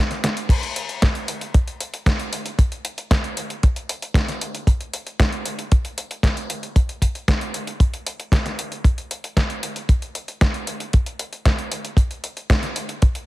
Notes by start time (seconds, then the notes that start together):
0.11 snare, closed hi-hat
0.24 snare, closed hi-hat
0.37 closed hi-hat
0.49 kick, closed hi-hat, crash
0.63 closed hi-hat
0.76 closed hi-hat
0.89 closed hi-hat
1.02 kick, snare, closed hi-hat
1.15 closed hi-hat
1.28 closed hi-hat
1.41 closed hi-hat
1.54 kick, closed hi-hat
1.68 closed hi-hat
1.80 closed hi-hat
1.94 closed hi-hat
2.06 kick, snare, closed hi-hat
2.20 closed hi-hat
2.33 closed hi-hat
2.46 closed hi-hat
2.59 kick, closed hi-hat
2.72 closed hi-hat
2.85 closed hi-hat
2.98 closed hi-hat
3.11 kick, snare, closed hi-hat
3.24 closed hi-hat
3.37 closed hi-hat
3.50 closed hi-hat
3.63 kick, closed hi-hat
3.76 closed hi-hat
3.89 closed hi-hat
4.02 closed hi-hat
4.14 kick, snare, closed hi-hat
4.28 snare, closed hi-hat
4.41 closed hi-hat
4.55 closed hi-hat
4.67 kick, closed hi-hat
4.81 closed hi-hat
4.93 closed hi-hat
5.07 closed hi-hat
5.20 kick, snare, closed hi-hat
5.33 closed hi-hat
5.46 closed hi-hat
5.59 closed hi-hat
5.72 kick, closed hi-hat
5.85 closed hi-hat
5.98 closed hi-hat
6.11 closed hi-hat
6.23 kick, snare, closed hi-hat
6.37 closed hi-hat
6.50 closed hi-hat
6.63 closed hi-hat
6.76 kick, closed hi-hat
6.89 closed hi-hat
7.02 kick, closed hi-hat
7.15 closed hi-hat
7.28 kick, snare, closed hi-hat
7.41 closed hi-hat
7.54 closed hi-hat
7.67 closed hi-hat
7.80 kick, closed hi-hat
7.94 closed hi-hat
8.07 closed hi-hat
8.20 closed hi-hat
8.32 kick, snare, closed hi-hat
8.46 snare, closed hi-hat
8.59 closed hi-hat
8.72 closed hi-hat
8.84 kick, closed hi-hat
8.98 closed hi-hat
9.11 closed hi-hat
9.24 closed hi-hat
9.37 kick, snare, closed hi-hat
9.50 closed hi-hat
9.63 closed hi-hat
9.76 closed hi-hat
9.89 kick, closed hi-hat
10.02 closed hi-hat
10.15 closed hi-hat
10.28 closed hi-hat
10.41 kick, snare, closed hi-hat
10.54 closed hi-hat
10.67 closed hi-hat
10.80 closed hi-hat
10.93 kick, closed hi-hat
11.06 closed hi-hat
11.19 closed hi-hat
11.33 closed hi-hat
11.45 kick, snare, closed hi-hat
11.59 closed hi-hat
11.72 closed hi-hat
11.85 closed hi-hat
11.97 kick, closed hi-hat
12.11 closed hi-hat
12.24 closed hi-hat
12.37 closed hi-hat
12.50 kick, snare, closed hi-hat
12.63 snare, closed hi-hat
12.76 closed hi-hat
12.89 closed hi-hat
13.02 kick, closed hi-hat
13.15 closed hi-hat